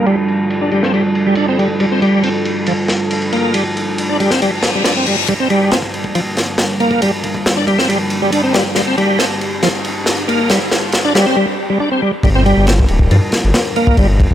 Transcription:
Already playing: G3 D4 F4 A4
0.06 G3, ride
0.28 ride
0.50 ride
0.61 D4
0.71 G3, ride
0.83 C4, snare
0.93 G3, ride
1.15 ride
1.27 G3
1.35 D4, ride
1.48 C4
1.59 G3, ride
1.80 G3, ride
1.92 C4
2.02 G3, ride
2.23 C4, ride
2.45 ride
2.66 F3, ride
2.88 snare, ride
3.11 ride
3.22 ride
3.32 A#3, ride
3.54 G3, ride
3.77 ride
3.98 ride
4.09 D4
4.20 G3, ride
4.31 C4, snare
4.41 G3, ride, reverse cymbal
4.63 snare, ride
4.75 G3
4.84 D4, snare, ride
4.97 C4
5.07 G3, ride
5.28 G3 D4 F4 A#4, kick, ride, riser
5.40 C4
5.50 G3, ride
5.71 C4, snare, ride
5.82 kick
5.94 ride
6.04 kick
6.15 F3, ride
6.37 snare, ride
6.58 snare, ride
6.70 ride
6.80 A#3, ride
6.91 kick
7.02 G3, kick, ride
7.24 kick, ride
7.34 kick
7.46 snare, ride
7.57 D4
7.67 G3, kick, ride
7.78 C4, snare
7.89 G3, ride
8.10 ride
8.22 G3
8.32 D4, ride
8.44 C4
8.54 G3, snare, ride
8.75 G3 G4, snare, ride
8.87 C4
8.98 G3, ride
9.19 C4, snare, ride
9.41 ride
9.63 F3, snare, ride
9.85 ride
10.06 snare, ride
10.18 ride
10.28 A#3, ride
10.50 G3, snare, ride
10.71 snare, ride
10.92 snare, ride
11.05 D4
11.15 G3, snare, ride
11.26 C4
11.36 G3, swell
11.70 G3
11.80 D4
11.91 C4
12.02 G3
12.23 G1 G3 D4 F4 A#4, kick, ride
12.35 C4
12.46 G3, ride
12.57 G1
12.67 C4, snare, ride
12.79 kick
12.88 D1, ride
12.99 kick
13.11 G2 F3, ride
13.32 snare, ride
13.45 G1
13.54 snare, ride
13.65 ride
13.76 A#3, ride
13.87 kick
13.97 G1 G3, kick, ride
14.20 kick, ride
14.31 G1, kick

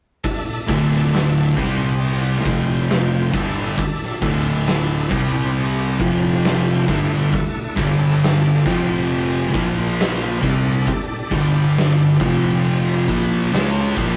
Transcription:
0.24 D4 A4 E5, kick, open hi-hat
0.67 D1 D2 A2 D3, kick
0.93 snare
1.12 snare, open hi-hat
1.55 C2 C3 G3 C4 G4 D5, kick
2.01 open hi-hat
2.43 F1 F2 C3 F3 F4 C5 G5, kick
2.89 snare, open hi-hat
3.31 G1 G2 D3 G3 D4 A4 E5, kick
3.77 kick, open hi-hat
4.02 snare
4.21 D1 D2 A2 D3, kick
4.66 snare, open hi-hat
5.09 C2 C3 G3 C4 G4 D5, kick
5.56 open hi-hat
5.99 F1 F2 C3 F3, kick
6.43 snare, open hi-hat
6.86 G1 G2 D3 G3 A3 E4, kick
7.33 kick, open hi-hat
7.76 G1 G2 D3 G3 D4 A4, kick
8.22 snare, open hi-hat
8.65 F1 F2 C3 F3 C4 G4, kick
9.11 open hi-hat
9.52 A#1 A#2 F3 A#3 F4 C5, kick
9.99 snare, open hi-hat
10.42 C2 C3 G3 C4 D4 A4, kick
10.87 kick, open hi-hat
11.31 G1 G2 D3 G3, kick
11.76 snare, open hi-hat
12.19 F1 F2 C3 F3 C4 G4, kick
12.64 open hi-hat
13.08 A#1 A#2 F3 A#3 G4 A5, kick
13.52 C#2 C#3 G#3 C#4, snare, open hi-hat
13.97 A#1 A#2 F3 A#3, kick

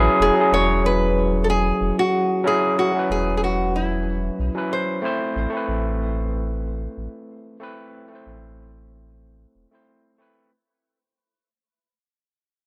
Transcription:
Already playing: F#3 C#4 E4 G#4 B4
0.20 E1 G#4
0.34 F#3 C#4
0.39 E4 G#4
0.52 E1 C#5
0.86 B4
1.44 A4
1.50 G#4
1.81 E1
1.99 F#4
2.44 F#3 C#4 E4 G#4
2.79 F#4
2.92 F#3 C#4
2.96 E4 B4
3.10 E1 G#4
3.37 G#4
3.44 F#4
3.76 E4
4.39 B1
4.54 F#3 C#4 E4 B4
4.73 C5
5.02 A3 C4 E4 C5
5.36 A1
5.50 A3 C4
5.54 E4 B4
5.68 A1
6.97 A1
7.60 A3 C4 E4 B4
8.08 A3 C4
8.13 E4 C5
8.26 A1
9.55 E1
9.71 A3 C4 E4 C5
10.18 A3 C4 E4 B4

